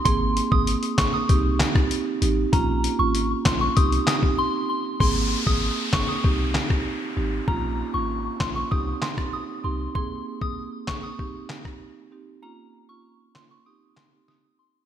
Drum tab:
HH |x-x-xxx-x-x-x-x-|x-x-x-x-xxx-----|----------------|----------------|
CP |------x---x-----|------x---x-----|------x---x-----|------x---x-----|
SD |------o---or----|------o---o-----|------o---or----|------o---or----|
BD |o--o--o-o--o----|o-----o-o--o----|o--o--o-o--o----|o-----o-o--o----|

HH |----------------|----------------|
CP |------x---x-----|------x---x-----|
SD |------o---or----|------o---o-o---|
BD |o--o--o-o--o----|----------------|